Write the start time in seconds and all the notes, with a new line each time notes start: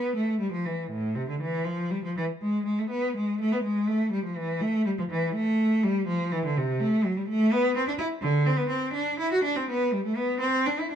Already playing: B3
0.16 A3
0.40 G3
0.52 F3
0.65 E3
0.90 A2
1.16 C3
1.29 D3
1.40 E3
1.64 F3
1.90 G3
2.04 F3
2.16 E3
2.41 G#3
2.65 G#3
2.78 A3
2.90 B3
3.17 G#3
3.40 A3
3.52 B3
3.63 G#3
3.87 A3
4.12 G3
4.24 F3
4.37 E3
4.61 A3
4.86 G3
4.99 F3
5.10 E3
5.35 A3
5.83 G3
6.08 F3
6.32 E3
6.45 D3
6.57 C3
6.80 A3
7.05 F#3
7.17 G3
7.29 A3
7.52 B3
7.77 C4
7.88 D4
7.98 E4
8.22 D3
8.46 C4
8.57 B3
8.69 C4
8.93 D4
9.19 E4
9.33 F#4
9.44 D4
9.56 C4
9.69 B3
9.92 G3
10.05 A3
10.16 B3
10.40 C4
10.66 D4
10.80 E4
10.91 D4